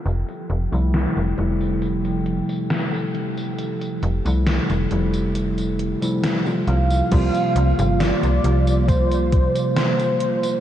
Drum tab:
CC |----------------|----------------|x---------------|
HH |xxxxxxxxxxxxx-xx|xxxxxxxxxxxxx-xx|xxxxxxxxxxxxxxxx|
TB |xx-xxx-xxx-xxx-x|xx-xxx-xxx-xxx-x|xx-xxx-xxx-xxx-x|
SD |----o-------o---|----o-------o---|----o-------o---|
BD |----------------|----------------|o-------o-o-----|